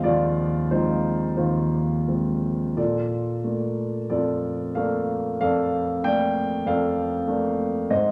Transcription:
Already playing: D#2 F3 G#3 C4 C5 D#5 F5
0.04 D#2 F4 D5
0.71 F3 G#3 C4 D#4 F4 C5
1.37 D#2 D#4 F4 C5
2.08 F3 G#3 C4
2.77 A#2 F4 A4 D5
3.44 A3 A#3 D4
4.10 F2 F4 A4 D5
4.75 A3 A#3 D4 A4 D5 F5
5.41 F2 A4 D5 F5
6.04 A3 A#3 D4 D5 G5
6.66 F2 A4 D5 F5
7.28 A3 A#3 D4
7.90 G#2 C5 D#5

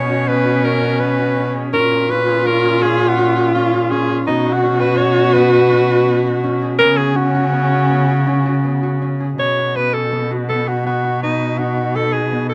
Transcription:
Already playing: B2 B3 C#4 G#4 C#5
0.10 F#4
0.28 B3 B4
0.45 F#4
0.63 C#4 A#4
0.82 F#4
1.00 B3 B4
1.19 F#4
1.37 C#4
1.55 G#4
1.73 A#2 C#4 F4 A#4
1.91 G#4
2.09 C#4 B4
2.27 G#4
2.46 C#4 A#4
2.64 G#4
2.82 C#4 G#4
3.00 G#4
3.08 F#4
3.18 C#4
3.37 G#4
3.54 C#4 F4
3.73 G#4
3.90 C#4 G#4
4.09 G#4
4.26 B2 B3 D#4 F#4
4.45 F#4
4.53 F#4
4.63 C#4
4.80 F#4 B4
4.97 B3 C#5
5.17 F#4
5.34 B3 B4
5.53 F#4 B4
5.71 C#4
5.89 F#4
6.07 B3
6.26 F#4
6.44 C#4
6.62 G#4
6.78 C#3 B3 C#4 A#4
6.97 F#4 G#4
7.15 C#4 F#4
7.34 F#4
7.52 B3
7.71 F#4
7.90 B3
8.08 F#4
8.27 C#4
8.45 F#4
8.64 B3
8.83 F#4
9.02 C#4
9.20 G#4
9.38 B2 B3 C#5
9.57 F#4
9.75 B3 B4
9.93 G#4 A4
10.12 B3
10.31 F#4
10.49 B3 A4
10.68 F#4
10.86 B3 F#4
11.04 F#4
11.23 B3 D#4
11.41 F#4
11.58 D#4 F#4
11.77 F#4
11.95 B3 A4
12.13 F#4 G#4
12.32 B3
12.49 G#4 A4

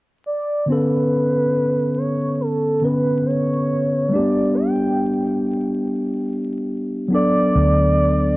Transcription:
0.26 D5
0.66 D3 B3 B4
0.70 C#4 A4
1.98 C#5
2.41 A4
2.82 D3 B3 C#4 B4
3.26 C#5
4.09 G3 A3 D5
4.13 D4 G4
4.18 B3
4.55 G5
7.08 F#3 B3
7.12 D4 A4 D5
7.55 D2

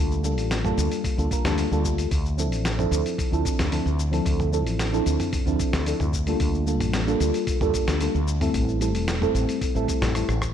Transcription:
Already playing: D2 G3 A#3 D4 F4 A4
0.12 shaker
0.23 G3 A#3 D4 F4 A4, shaker
0.38 A1, open hi-hat, shaker
0.51 snare, open hi-hat, shaker
0.63 G3 A#3 D4 F4 A4, mid tom, shaker
0.78 D2, open hi-hat, shaker
0.92 open hi-hat, shaker
1.04 kick, open hi-hat, shaker
1.17 D2 G3 A#3 D4 F4 A4, shaker
1.30 G3 A#3 D4 F4 A#4, kick, open hi-hat, shaker
1.44 D2 G3 A#3 D4 F4 A4, snare, mid tom, open hi-hat, shaker
1.58 open hi-hat, shaker
1.71 D2 G3 A#3 D4 F4 A4, shaker
1.85 kick, shaker
1.98 open hi-hat, shaker
2.11 D2, kick, open hi-hat, shaker
2.26 shaker
2.37 F3 C4 D4 E4 A4, shaker
2.52 A1, open hi-hat, shaker
2.65 snare, open hi-hat, shaker
2.77 F3 C4 D4 E4 A4, mid tom, shaker
2.91 D2, open hi-hat, shaker
3.06 open hi-hat, shaker
3.18 kick, open hi-hat, shaker
3.31 D2 F3 C4 D4 E4 A4, shaker
3.45 kick, open hi-hat, shaker
3.59 D2, snare, mid tom, open hi-hat, shaker
3.71 F3 C4 D4 E4 A4, open hi-hat, shaker
3.86 D2, shaker
4.00 shaker
4.11 F3 C4 D4 E4 A4, open hi-hat, shaker
4.26 D2, kick, open hi-hat, shaker
4.40 mid tom, shaker
4.52 F3 C4 D4 E4 A4, shaker
4.66 A1, open hi-hat, shaker
4.79 snare, open hi-hat, shaker
4.92 F3 C4 D4 E4 A4, shaker
5.06 D2, open hi-hat, shaker
5.20 mid tom, open hi-hat, shaker
5.33 kick, open hi-hat, shaker
5.46 D2 F3 C4 D4 E4 A4, shaker
5.59 kick, open hi-hat, shaker
5.73 D2, snare, open hi-hat, shaker
5.86 F3 C4 D4 E4 A4, open hi-hat, shaker
6.00 D2, mid tom, shaker
6.13 kick, shaker
6.27 G3 A#3 D4 F4 A4, open hi-hat, shaker
6.40 D2, kick, open hi-hat, shaker
6.54 shaker
6.66 G3 A#3 D4 F4 A4, shaker
6.80 A1, mid tom, open hi-hat, shaker
6.93 snare, open hi-hat, shaker
7.06 G3 A#3 D4 F4 A4, shaker
7.20 D2, open hi-hat, shaker
7.34 open hi-hat, shaker
7.47 kick, open hi-hat, shaker
7.60 D2 G3 A#3 D4 F4 A4, mid tom, shaker
7.74 kick, open hi-hat, shaker
7.88 D2, snare, open hi-hat, shaker
8.00 G3 A#3 D4 F4 A4, open hi-hat, shaker
8.15 D2, shaker
8.28 shaker
8.40 G3 A3 C4 E4 A4, mid tom, open hi-hat, shaker
8.54 A1, kick, open hi-hat, shaker
8.69 shaker
8.80 G3 A3 C4 E4 A4, open hi-hat, shaker
8.95 E1, open hi-hat, shaker
9.08 snare, open hi-hat, shaker
9.21 G3 A3 C4 E4 A4, mid tom, shaker
9.35 A1, open hi-hat, shaker
9.49 open hi-hat, shaker
9.61 kick, open hi-hat, shaker
9.74 A1 G3 A3 C4 E4 A4, shaker
9.88 kick, open hi-hat, shaker
10.02 A1, snare, mid tom, open hi-hat, shaker
10.14 G3 A3 C4 E4 A4, cross-stick, open hi-hat, shaker
10.28 A1, cross-stick, shaker
10.42 kick, cross-stick, shaker

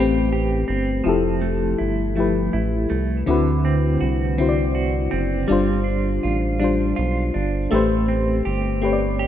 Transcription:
Already playing: A1 A3 C4 G4 B4
0.32 G4
0.68 G1 C4
1.04 F1 F3 E4 G4
1.09 A4
1.41 A3
1.78 G1 E4
2.15 F3 A3 E4 G4
2.20 B4
2.53 A1 E4
2.90 C2 A3
3.26 D2 D3 C4 E4 F#4
3.31 B4
3.65 C4
4.01 C2 F#4
4.37 D3 C4 E4 F#4
4.42 C5
4.49 D5
4.75 F#4
5.11 F#1 C4
5.48 G1 G3 D4 F4
5.52 C5
5.84 D4
6.23 A1 F4
6.60 G3 D4 F4
6.64 C5
6.96 B1 F4
7.34 G1 D4
7.71 A1 A3 G4 B4
7.75 C5
8.08 C4
8.45 G1 G4
8.81 A3 C4 G4 B4
8.86 C#5
8.93 D5
9.19 G4

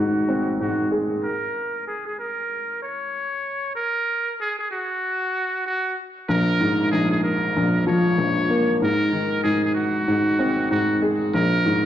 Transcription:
Already playing: G#2 D#3 F#4
0.29 C4
0.60 G#2 F#4
0.91 G#4
1.24 A#4
1.88 G#4
2.06 G#4
2.19 A#4
2.83 C#5
3.76 A#4
4.41 G#4
4.59 G#4
4.71 F#4
5.66 F#4
6.29 A#1 A#4
6.61 G#2
6.91 A#1 G#4
7.11 G#4
7.24 A#4
7.57 A#1
7.87 F3 C#5
8.18 A#1
8.50 A#3
8.82 G#2 A#4
9.13 D#3
9.43 G#2 G#4
9.65 G#4
9.74 F#4
10.08 G#2
10.39 C4
10.71 G#2 F#4
11.02 G#4
11.34 A#1 A#4
11.65 G#2

